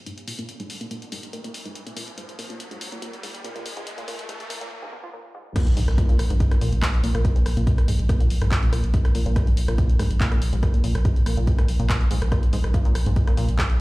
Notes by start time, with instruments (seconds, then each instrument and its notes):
Already playing: riser
0.06 synth arpeggio sound G#2, closed hi-hat
0.18 closed hi-hat
0.28 synth arpeggio sound A#2, open hi-hat
0.39 synth arpeggio sound A#2, closed hi-hat
0.49 closed hi-hat
0.60 synth arpeggio sound G#2, closed hi-hat
0.70 open hi-hat
0.81 synth arpeggio sound A#2, closed hi-hat
0.91 synth arpeggio sound A#2, closed hi-hat
1.02 closed hi-hat
1.12 synth arpeggio sound G#2, open hi-hat
1.23 closed hi-hat
1.33 synth arpeggio sound A#2, closed hi-hat
1.44 synth arpeggio sound A#2, closed hi-hat
1.54 open hi-hat
1.65 synth arpeggio sound G#2, closed hi-hat
1.75 closed hi-hat
1.87 synth arpeggio sound A#2, closed hi-hat
1.97 synth arpeggio sound A#2, open hi-hat
2.08 closed hi-hat
2.18 synth arpeggio sound G#2, closed hi-hat
2.29 closed hi-hat
2.39 synth arpeggio sound A#2, open hi-hat
2.50 synth arpeggio sound A#2, closed hi-hat
2.60 closed hi-hat
2.71 synth arpeggio sound G#2, closed hi-hat
2.81 open hi-hat
2.92 synth arpeggio sound A#2, closed hi-hat
3.02 synth arpeggio sound A#2, closed hi-hat
3.13 closed hi-hat
3.23 synth arpeggio sound G#2, open hi-hat
3.35 closed hi-hat
3.44 synth arpeggio sound A#2, closed hi-hat
3.56 synth arpeggio sound A#2, closed hi-hat
3.66 open hi-hat
3.77 synth arpeggio sound G#2, closed hi-hat
3.87 closed hi-hat
3.98 synth arpeggio sound A#2, closed hi-hat
4.08 synth arpeggio sound A#2, open hi-hat
4.19 closed hi-hat
4.29 synth arpeggio sound G#2, closed hi-hat
4.40 closed hi-hat
4.50 synth arpeggio sound A#2, open hi-hat
4.61 synth arpeggio sound A#2, closed hi-hat
4.82 synth arpeggio sound G#2
4.92 synth arpeggio sound B2
5.03 synth arpeggio sound F3
5.13 synth arpeggio sound A#2
5.35 synth arpeggio sound G#2
5.56 synth arpeggio sound A#2, kick, cross-stick, closed hi-hat, crash, impact
5.67 sub bass A#1, closed hi-hat
5.77 sub bass A#1, synth arpeggio sound G#2, open hi-hat
5.88 sub bass A#1, cross-stick, closed hi-hat
5.98 synth arpeggio sound A#2, kick, closed hi-hat
6.09 sub bass A#1, synth arpeggio sound A#2, closed hi-hat
6.19 sub bass A#1, cross-stick, open hi-hat
6.30 sub bass A#1, synth arpeggio sound G#2, closed hi-hat
6.40 kick, closed hi-hat
6.51 sub bass A#1, synth arpeggio sound A#2, cross-stick, closed hi-hat
6.61 sub bass A#1, synth arpeggio sound A#2, open hi-hat
6.73 sub bass A#1, closed hi-hat
6.82 synth arpeggio sound G#2, kick, cross-stick, clap, closed hi-hat
6.94 sub bass A#1, closed hi-hat
7.04 sub bass A#1, synth arpeggio sound A#2, open hi-hat
7.15 sub bass A#1, synth arpeggio sound A#2, cross-stick, closed hi-hat
7.25 kick, closed hi-hat
7.36 sub bass A#1, synth arpeggio sound G#2, closed hi-hat
7.46 sub bass A#1, cross-stick, open hi-hat
7.57 sub bass A#1, synth arpeggio sound A#2, closed hi-hat
7.67 synth arpeggio sound A#2, kick, closed hi-hat
7.78 sub bass A#1, cross-stick, closed hi-hat
7.88 sub bass A#1, synth arpeggio sound G#2, open hi-hat
7.99 sub bass A#1, closed hi-hat
8.09 synth arpeggio sound A#2, kick, cross-stick, closed hi-hat
8.20 sub bass A#1, synth arpeggio sound A#2, closed hi-hat
8.30 sub bass A#1, open hi-hat
8.42 sub bass A#1, synth arpeggio sound G#2, cross-stick, closed hi-hat
8.52 kick, clap, closed hi-hat
8.63 sub bass A#1, synth arpeggio sound A#2, closed hi-hat
8.73 sub bass A#1, synth arpeggio sound A#2, cross-stick, open hi-hat
8.84 sub bass A#1, closed hi-hat
8.94 synth arpeggio sound G#2, kick, closed hi-hat
9.05 sub bass A#1, cross-stick, closed hi-hat
9.15 sub bass A#1, synth arpeggio sound A#2, open hi-hat
9.26 sub bass A#1, synth arpeggio sound A#2, closed hi-hat
9.36 kick, cross-stick, closed hi-hat
9.47 sub bass A#1, synth arpeggio sound G#2, closed hi-hat
9.57 sub bass A#1, open hi-hat
9.68 sub bass A#1, synth arpeggio sound A#2, cross-stick, closed hi-hat
9.78 synth arpeggio sound A#2, kick, closed hi-hat
9.89 sub bass A#1, closed hi-hat
9.99 sub bass A#1, synth arpeggio sound G#2, cross-stick, open hi-hat
10.11 sub bass A#1, closed hi-hat
10.21 synth arpeggio sound A#2, kick, clap, closed hi-hat
10.32 sub bass A#1, synth arpeggio sound A#2, cross-stick, closed hi-hat
10.42 sub bass A#1, open hi-hat
10.53 sub bass A#1, synth arpeggio sound G#2, closed hi-hat
10.63 kick, cross-stick, closed hi-hat
10.74 sub bass A#1, synth arpeggio sound A#2, closed hi-hat
10.84 sub bass A#1, synth arpeggio sound A#2, open hi-hat
10.95 sub bass A#1, cross-stick, closed hi-hat
11.05 synth arpeggio sound G#2, kick, closed hi-hat
11.16 sub bass A#1, closed hi-hat
11.26 sub bass A#1, synth arpeggio sound A#2, cross-stick, open hi-hat
11.37 sub bass A#1, synth arpeggio sound A#2, closed hi-hat
11.47 kick, closed hi-hat
11.58 sub bass A#1, synth arpeggio sound G#2, cross-stick, closed hi-hat
11.68 sub bass A#1, open hi-hat
11.80 sub bass A#1, synth arpeggio sound A#2, closed hi-hat
11.90 synth arpeggio sound A#2, kick, cross-stick, clap, closed hi-hat
12.01 sub bass A#1, closed hi-hat
12.11 sub bass A#1, synth arpeggio sound G#2, open hi-hat
12.22 sub bass A#1, cross-stick, closed hi-hat
12.32 synth arpeggio sound A#2, kick, cross-stick, closed hi-hat
12.43 sub bass A#1, closed hi-hat
12.53 sub bass A#1, synth arpeggio sound G#2, open hi-hat
12.64 sub bass A#1, cross-stick, closed hi-hat
12.74 synth arpeggio sound A#2, kick, closed hi-hat
12.85 sub bass A#1, synth arpeggio sound A#2, closed hi-hat
12.95 sub bass A#1, cross-stick, open hi-hat
13.06 sub bass A#1, synth arpeggio sound G#2, closed hi-hat
13.16 kick, closed hi-hat
13.27 sub bass A#1, synth arpeggio sound A#2, cross-stick, closed hi-hat
13.37 sub bass A#1, synth arpeggio sound A#2, open hi-hat
13.49 sub bass A#1, closed hi-hat
13.59 synth arpeggio sound G#2, kick, cross-stick, clap, closed hi-hat
13.70 sub bass A#1, closed hi-hat